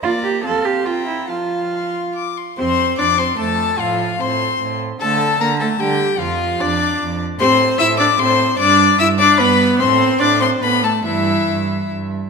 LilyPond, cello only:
\new Staff \with { instrumentName = "Cello" } { \clef bass \time 3/4 \key f \major \tempo 4 = 148 f'8 g'8 a'8 g'8 f'8 e'8 | f'2 r4 | f,4 f,4 f,4 | a,4 a,4 a,4 |
d4 d4 d4 | f,4 f,4 f,4 | \key a \minor a,4 a,4 a,4 | g,4 g,4 g,4 |
a,4 a,4 a,4 | g,4 g,4 g,4 | }